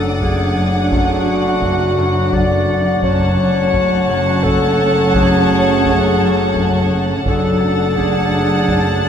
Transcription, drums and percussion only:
0.21 taiko
0.92 taiko
1.62 taiko
2.32 taiko
3.03 taiko
3.73 taiko
4.44 taiko
5.14 taiko
5.85 taiko
6.56 taiko
7.26 taiko
7.97 taiko
8.68 taiko

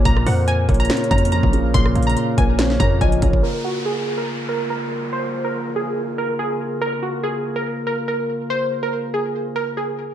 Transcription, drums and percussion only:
0.05 kick, closed hi-hat
0.17 cross-stick
0.26 cross-stick, open hi-hat
0.48 closed hi-hat
0.69 kick, closed hi-hat
0.74 closed hi-hat
0.80 closed hi-hat
0.85 closed hi-hat
0.90 snare, closed hi-hat
0.97 closed hi-hat
1.04 closed hi-hat
1.11 kick, closed hi-hat
1.18 closed hi-hat
1.25 closed hi-hat
1.32 closed hi-hat
1.43 kick
1.53 closed hi-hat
1.74 kick, closed hi-hat
1.86 cross-stick
1.95 closed hi-hat, open hi-hat
2.02 closed hi-hat
2.10 closed hi-hat
2.17 closed hi-hat
2.38 kick, closed hi-hat
2.59 snare, closed hi-hat
2.70 snare
2.80 kick, closed hi-hat
3.01 kick, closed hi-hat
3.12 closed hi-hat
3.22 kick, closed hi-hat
3.33 kick

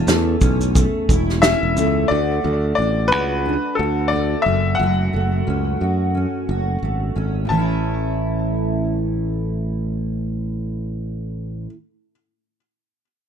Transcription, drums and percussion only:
0.08 snare, shaker
0.41 kick, shaker
0.61 shaker
0.75 kick, shaker
1.09 kick, shaker
1.29 snare
1.43 snare, shaker
1.77 shaker

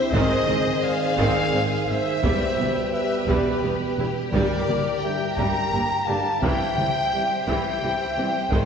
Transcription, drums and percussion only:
0.13 taiko
0.49 taiko mid
1.19 taiko
2.24 taiko
2.58 taiko mid
3.28 taiko
4.33 taiko
4.68 taiko mid
5.38 taiko
6.43 taiko
6.78 taiko mid
7.48 taiko
8.52 taiko

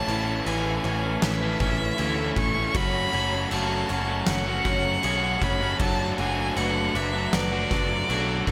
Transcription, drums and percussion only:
0.08 crash
0.46 crash
0.84 crash
1.22 snare, crash
1.60 kick, crash
1.98 crash
2.36 kick, crash
2.75 kick, crash
3.13 crash
3.51 crash
3.89 crash
4.27 snare, crash
4.65 kick, crash
5.03 crash
5.42 kick, crash
5.79 kick, crash
6.18 crash
6.56 crash
6.95 crash
7.33 snare, crash
7.71 kick, snare, crash
8.10 crash
8.47 kick, crash

